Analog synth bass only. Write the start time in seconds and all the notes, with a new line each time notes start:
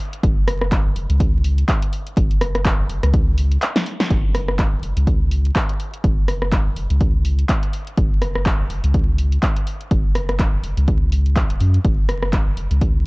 0.23 F#1
0.86 F#1
0.96 F#1
1.10 C#2
2.17 F#1
2.79 F#1
2.90 F#1
3.03 C#2
4.10 F#1
4.73 F#1
4.83 F#1
4.97 C#2
6.04 F#1
6.66 F#1
6.77 F#1
6.90 C#2
7.97 F#1
8.60 F#1
8.70 F#1
8.84 C#2
9.91 F#1
10.53 F#1
10.64 F#1
10.77 C#2
11.12 C#2
11.50 E1
11.60 F#2
11.85 F#1
12.47 F#1
12.57 F#1
12.71 C#2